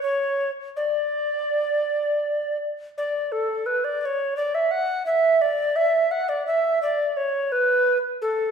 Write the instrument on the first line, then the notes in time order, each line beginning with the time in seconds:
recorder
0.03 C#5
0.77 D5
2.98 D5
3.32 A4
3.66 B4
3.84 D5
4.01 D5
4.05 C#5
4.37 D5
4.55 E5
4.71 F#5
5.06 E5
5.41 D5
5.76 E5
6.11 F#5
6.29 D5
6.47 E5
6.83 D5
7.17 C#5
7.52 B4
8.22 A4